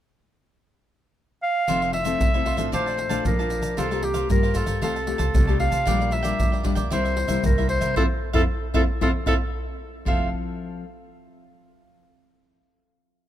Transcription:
1.43 F5
1.68 F1 F3 A3 C4 E4 F4 A4 C5 E5, pandeiro, shaker, surdo
1.82 A4 C5 E5, pandeiro, shaker
1.93 E5, muted cavaquinho stroke, pandeiro
2.05 A3 C4 E4 A4 C5 E5, pandeiro, shaker
2.20 C2 C3, pandeiro, shaker, surdo
2.34 A3 C4 E4 A4 C5 E5, pandeiro, shaker
2.45 F4 A4 C5 E5, pandeiro
2.57 A1 A3 D4 F4 A4 C5 E5, pandeiro, shaker
2.72 A#1 A#2 A#4 C5 D5 F5 A5, pandeiro, shaker, surdo
2.86 D5 F5 A5, pandeiro, shaker
2.97 muted cavaquinho stroke, pandeiro
3.09 A#1 A3 D4 F4 D5 F5 A5, pandeiro, shaker
3.25 A#1 F3 A#4, pandeiro, shaker, surdo
3.39 D4 F4 D5 F5 A5, pandeiro, shaker
3.50 pandeiro, shaker
3.62 B1 D5 F5 A5, pandeiro, shaker
3.77 C2 C3 A#3 F4 G4 A4 A#4 C5 F5, pandeiro, shaker, surdo
3.91 A#3 F4 G4 A#4 C5 F5, pandeiro, shaker
4.02 G4, muted cavaquinho stroke, pandeiro
4.14 A#4 C5 F5, pandeiro, shaker
4.29 G2 G3 A#3 F4 G4 A#4, pandeiro, shaker, surdo
4.43 A#4 C5 F5, pandeiro, shaker
4.54 F4 A4 A#4 C5 F5, pandeiro, shaker, surdo
4.66 G2 A#4 C5 F5, pandeiro, shaker
4.82 C2 C3 A3 F4 G4 A4 C5 F5 A5, pandeiro, shaker, surdo
4.95 C5 F5 A5, pandeiro, shaker
5.07 A3 F4 G4, muted cavaquinho stroke, pandeiro
5.18 C2 C5 F5 A5, pandeiro, shaker
5.34 C2 C3 A3 F4 G4, pandeiro, shaker, surdo
5.47 A3 F4 G4 C5 F5 A5, pandeiro, shaker
5.59 A3 F4 G4 F5, pandeiro
5.71 C3 C5 F5 A5, pandeiro, shaker
5.86 A#1 A#2 G3 D4 F4 A#4 D5 G5, pandeiro, shaker, surdo
6.00 A#4 D5 G5, pandeiro, shaker
6.11 E5, muted cavaquinho stroke, pandeiro
6.23 G3 D4 F4 A#4 D5 G5, pandeiro, shaker
6.39 F2 F3, pandeiro, shaker, surdo
6.52 A#4 D5 G5, pandeiro, shaker
6.63 G3 D4 F4 A#4 D5 G5, pandeiro, surdo
6.75 A#1 A#4 D5 G5, pandeiro, shaker
6.90 C2 C3 G3 A#3 E4 A#4 C5 E5, pandeiro, shaker, surdo
7.05 A#4 C5 E5, pandeiro, shaker
7.16 muted cavaquinho stroke, pandeiro
7.28 C2 G3 A#3 E4 A#4 C5 E5, pandeiro, shaker
7.44 C2 G2 A#4, pandeiro, shaker, surdo
7.58 G3 A#3 E4 A#4 C5 E5, pandeiro, shaker
7.69 C5, pandeiro
7.81 C3 A#4 C5 E5, pandeiro, shaker
7.96 F2 C4 E4 F4 A4 C5 E5 F5, surdo
8.33 F2 C4 E4 F4 A4 C5 E5 F5, surdo
8.74 F2 C4 E4 F4 A4 C5 E5 F5, surdo
9.01 F2 C4 E4 F4 A4 C5 E5 F5, surdo
9.26 F2 C4 E4 F4 A4 C5 E5 F5, surdo
10.05 F1 F3 C4 E4 F4 A4 C5 E5 F5, surdo

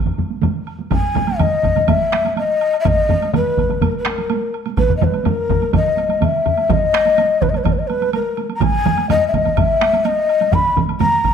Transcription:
0.06 taiko low-mid, taiko mid
0.18 taiko low-mid, taiko mid, taiko high
0.30 taiko high
0.42 taiko low-mid, taiko mid, taiko high, high woodblock
0.67 high woodblock
0.79 taiko high
0.91 G#5, taiko, taiko low-mid, taiko mid, taiko high, high woodblock
1.15 taiko low-mid, taiko mid, taiko high, high woodblock
1.27 taiko high, high woodblock
1.39 D#5, taiko low-mid, taiko mid, taiko high, high woodblock
1.63 taiko, taiko low-mid, taiko mid, taiko high, high woodblock
1.76 taiko low-mid, taiko mid, taiko high, high woodblock
1.88 E5, taiko, taiko low-mid, taiko mid, taiko high, high woodblock
2.12 taiko rim, taiko high, high woodblock
2.25 taiko high, high woodblock
2.36 D#5, taiko high, high woodblock
2.61 high woodblock
2.73 high woodblock
2.80 E5
2.85 D#5, taiko, taiko low-mid, taiko mid, taiko high, high woodblock
3.09 taiko low-mid, taiko mid, taiko high, high woodblock
3.22 taiko high, high woodblock
3.34 B4, taiko low-mid, taiko mid, taiko high, high woodblock
3.57 taiko, taiko low-mid, taiko mid, taiko high, high woodblock
3.70 taiko low-mid, taiko mid, taiko high, high woodblock
3.81 A#4, taiko, taiko low-mid, taiko mid, taiko high, high woodblock
3.98 B4
4.05 A#4, taiko rim, taiko high, high woodblock
4.18 taiko high, high woodblock
4.30 taiko high, high woodblock
4.54 high woodblock
4.66 taiko high, high woodblock
4.77 B4, taiko, taiko low-mid, taiko mid, taiko high, high woodblock
4.89 taiko low-mid, taiko mid
4.97 D#5
5.01 B4, taiko low-mid, taiko mid, taiko high, high woodblock
5.13 taiko high, high woodblock
5.25 A#4, taiko low-mid, taiko mid, taiko high, high woodblock
5.49 taiko, taiko low-mid, taiko mid, taiko high, high woodblock
5.61 taiko high, high woodblock
5.73 D#5, taiko, taiko low-mid, taiko mid, taiko high, high woodblock
5.97 taiko high, high woodblock
6.09 taiko high, high woodblock
6.21 E5, taiko low-mid, taiko mid, taiko high, high woodblock
6.46 taiko low-mid, taiko mid, high woodblock
6.57 taiko high, high woodblock
6.69 D#5, taiko, taiko low-mid, taiko mid, taiko high, high woodblock
6.93 taiko rim, taiko high, high woodblock
7.05 taiko high, high woodblock
7.18 taiko high, high woodblock
7.41 B4, taiko, taiko low-mid, taiko mid, high woodblock
7.49 D#5
7.54 B4, taiko high, high woodblock
7.64 D#5, taiko, taiko low-mid, taiko mid, taiko high, high woodblock
7.72 B4
7.78 D#5
7.87 B4, taiko high, high woodblock
8.02 taiko high, high woodblock
8.13 A#4, taiko high, high woodblock
8.37 taiko high, high woodblock
8.49 taiko high, high woodblock
8.55 A#5
8.61 G#5, taiko, taiko low-mid, taiko mid, taiko high, high woodblock
8.85 taiko low-mid, taiko mid, taiko high, high woodblock
8.98 taiko high, high woodblock
9.09 D#5, taiko low-mid, taiko mid, taiko high, high woodblock
9.27 E5
9.34 D#5, taiko, taiko low-mid, taiko mid, taiko high, high woodblock
9.45 taiko low-mid, taiko mid, taiko high, high woodblock
9.57 E5, taiko, taiko low-mid, taiko mid, taiko high, high woodblock
9.81 taiko rim, taiko high, high woodblock
9.93 taiko high, high woodblock
10.05 D#5, taiko high, high woodblock
10.29 high woodblock
10.41 taiko high, high woodblock
10.52 B5, taiko, taiko low-mid, taiko mid, taiko high, high woodblock
10.76 taiko low-mid, taiko mid, taiko high, high woodblock
10.88 taiko high, high woodblock
11.00 A#5, taiko low-mid, taiko mid, taiko high, high woodblock
11.24 taiko, taiko low-mid, taiko mid, taiko high, high woodblock

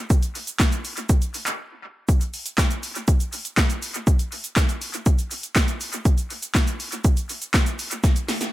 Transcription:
0.10 kick, closed hi-hat, shaker
0.23 closed hi-hat, shaker
0.35 open hi-hat, shaker
0.47 closed hi-hat, shaker
0.60 kick, snare, clap, closed hi-hat, shaker
0.72 closed hi-hat, shaker
0.85 open hi-hat, shaker
0.97 closed hi-hat, shaker
1.09 kick, closed hi-hat, shaker
1.22 closed hi-hat, shaker
1.34 open hi-hat, shaker
1.46 clap, closed hi-hat, shaker
2.09 kick, closed hi-hat, shaker
2.21 closed hi-hat, shaker
2.34 open hi-hat, shaker
2.46 closed hi-hat, shaker
2.58 kick, snare, clap, closed hi-hat, shaker
2.71 closed hi-hat, shaker
2.83 open hi-hat, shaker
2.95 closed hi-hat, shaker
3.08 kick, closed hi-hat, shaker
3.20 closed hi-hat, shaker
3.33 open hi-hat, shaker
3.45 closed hi-hat, shaker
3.57 kick, snare, clap, closed hi-hat, shaker
3.70 closed hi-hat, shaker
3.82 open hi-hat, shaker
3.94 closed hi-hat, shaker
4.07 kick, closed hi-hat, shaker
4.19 closed hi-hat, shaker
4.32 open hi-hat, shaker
4.44 closed hi-hat, shaker
4.56 kick, snare, clap, closed hi-hat, shaker
4.69 closed hi-hat, shaker
4.82 open hi-hat, shaker
4.94 closed hi-hat, shaker
5.06 kick, closed hi-hat, shaker
5.18 closed hi-hat, shaker
5.31 open hi-hat, shaker
5.43 closed hi-hat, shaker
5.56 kick, snare, clap, closed hi-hat, shaker
5.68 closed hi-hat, shaker
5.80 open hi-hat, shaker
5.93 closed hi-hat, shaker
6.05 kick, closed hi-hat, shaker
6.18 closed hi-hat, shaker
6.30 open hi-hat, shaker
6.42 closed hi-hat, shaker
6.55 kick, snare, clap, closed hi-hat, shaker
6.67 closed hi-hat, shaker
6.80 open hi-hat, shaker
6.92 closed hi-hat, shaker
7.04 kick, closed hi-hat, shaker
7.17 closed hi-hat, shaker
7.29 open hi-hat, shaker
7.42 closed hi-hat, shaker
7.54 kick, snare, clap, closed hi-hat, shaker
7.66 closed hi-hat, shaker
7.79 open hi-hat, shaker
7.91 closed hi-hat, shaker
8.04 kick, snare, closed hi-hat, shaker
8.16 closed hi-hat, shaker
8.28 snare, open hi-hat, shaker
8.41 snare, closed hi-hat, shaker

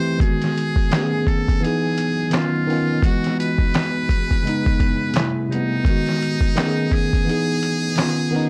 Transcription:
Already playing: E3 A3 C4 G4 C5
0.18 D#3 G#3 B3 G#5, kick, closed hi-hat
0.22 F#4 G#4
0.42 snare, closed hi-hat
0.58 closed hi-hat
0.76 kick
0.90 D#3 A3 B3 D#4, snare, clap, closed hi-hat
0.95 C#4 G4
1.03 G#4
1.27 A4, kick, closed hi-hat
1.48 kick, closed hi-hat
1.61 E3 B3 D#4 G#4, closed hi-hat
1.66 G#4
1.98 closed hi-hat
2.30 D#3 B3 C#4, snare, clap, closed hi-hat
2.34 F4
2.67 D#3 B3 C#4, open hi-hat
2.72 F4
3.01 E3 G#3 B3 F#4, kick, closed hi-hat
3.07 F#4
3.24 snare, closed hi-hat
3.40 B4, closed hi-hat
3.58 kick
3.74 snare, clap, closed hi-hat
4.09 kick, closed hi-hat
4.31 kick, closed hi-hat
4.43 C#3 G#3 B3, closed hi-hat
4.49 D#4
4.66 kick
4.80 kick, closed hi-hat
5.14 C3 G3 A3, snare, clap, closed hi-hat
5.19 E4
5.49 C3 G3 A3 D#4, closed hi-hat
5.54 B3
5.85 D#3 G#3 B3, kick, closed hi-hat
5.90 F#4
6.06 snare, closed hi-hat
6.22 closed hi-hat
6.41 kick
6.55 D#3 A3 B3, snare, clap, closed hi-hat
6.60 C#4 G4
6.68 G#4
6.91 G#4, kick, closed hi-hat
7.13 kick, closed hi-hat
7.25 E3 B3 D#4
7.29 G#4, closed hi-hat
7.63 closed hi-hat
7.96 D#3 B3 C#4, snare, clap, closed hi-hat
8.01 F4
8.30 D#3 B3 C#4
8.35 D#4, open hi-hat

